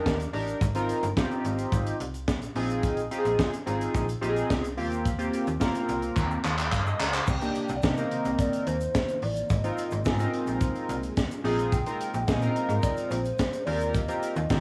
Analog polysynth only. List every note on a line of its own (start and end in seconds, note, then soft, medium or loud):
0.00 0.17 D4 loud
0.00 0.17 D#4 loud
0.00 0.17 G4 medium
0.00 0.17 A#4 loud
0.33 0.61 D4 medium
0.33 0.61 D#4 medium
0.33 0.61 G4 medium
0.33 0.61 A#4 loud
0.75 1.04 C4 loud
0.75 1.05 D#4 medium
0.75 1.05 F4 medium
0.75 1.05 A#4 loud
1.16 1.95 C4 loud
1.16 1.95 D#4 medium
1.16 1.95 F4 medium
1.16 1.95 G4 loud
2.56 3.00 C4 medium
2.56 3.00 D#4 medium
2.56 3.00 F4 medium
2.56 3.00 G#4 loud
3.11 3.50 C4 medium
3.11 3.50 D#4 medium
3.11 3.51 F4 medium
3.11 3.18 G4 medium
3.18 3.54 G#4 loud
3.66 4.06 C4 medium
3.66 4.06 D#4 medium
3.66 4.06 F4 medium
3.66 4.06 G#4 loud
4.21 4.61 C4 loud
4.21 4.61 D#4 medium
4.21 4.61 F4 medium
4.21 4.29 G4 medium
4.28 4.65 G#4 loud
4.77 5.11 A#3 medium
4.77 5.11 C4 medium
4.77 5.11 F4 medium
4.77 5.11 G4 loud
5.18 5.48 A#3 loud
5.18 5.48 C4 medium
5.18 5.48 F4 medium
5.18 5.49 G4 loud
5.60 6.39 A#3 loud
5.60 6.39 C4 medium
5.60 6.39 F4 medium
5.60 6.39 A#4 loud
6.58 6.71 G5 medium
6.72 6.85 F5 medium
6.86 6.99 D#5 medium
6.99 7.13 D5 medium
7.14 7.40 C5 medium
7.42 7.71 A#3 medium
7.42 7.71 D4 medium
7.42 7.71 D#4 medium
7.42 7.71 G4 medium
7.83 7.93 A#3 medium
7.83 7.93 D4 medium
7.83 7.93 D#4 medium
7.83 7.93 G4 medium
7.97 8.75 A#3 medium
7.97 8.76 C4 medium
7.97 8.76 D#4 medium
7.97 8.76 A#4 medium
9.64 9.93 C4 medium
9.64 9.93 D#4 medium
9.64 9.94 F4 medium
9.64 9.94 A#4 medium
10.05 10.15 C4 medium
10.05 10.15 D#4 medium
10.05 10.15 F4 medium
10.05 10.16 A#4 medium
10.19 10.98 C4 medium
10.19 10.98 D#4 medium
10.19 10.98 F4 medium
10.19 10.98 A#4 loud
11.44 11.78 C4 medium
11.44 11.78 D#4 medium
11.44 11.78 F4 medium
11.44 11.78 G#4 loud
11.86 12.16 C4 medium
11.86 12.16 D#4 medium
11.86 12.16 F4 medium
11.86 12.16 A#4 medium
12.28 12.37 C4 medium
12.28 12.38 D#4 medium
12.28 12.38 F4 medium
12.28 12.38 G#4 medium
12.41 13.20 C4 medium
12.41 13.20 D#4 medium
12.41 13.20 F4 medium
12.41 13.20 A#4 loud
13.66 14.00 C4 medium
13.66 14.00 F4 medium
13.66 14.00 G4 medium
13.66 14.00 A#4 medium
14.08 14.38 C4 medium
14.08 14.38 F4 medium
14.08 14.38 G4 medium
14.08 14.38 A#4 medium
14.50 14.60 C4 medium
14.50 14.60 F4 medium
14.50 14.60 G4 medium
14.50 14.60 A#4 medium